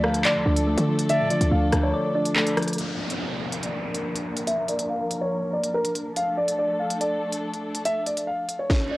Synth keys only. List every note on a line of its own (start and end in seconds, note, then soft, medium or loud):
0.00 0.46 D3 loud
0.00 0.67 F3 medium
0.00 0.66 A3 medium
0.25 1.31 D5 medium
0.46 1.52 D4 medium
0.67 1.50 A3 loud
0.89 1.29 F3 medium
1.09 2.15 D3 medium
1.30 2.36 F3 medium
1.52 2.35 A3 medium
1.94 2.78 D5 medium
2.15 2.78 D4 medium
2.36 2.78 A3 medium
2.57 2.78 F3 medium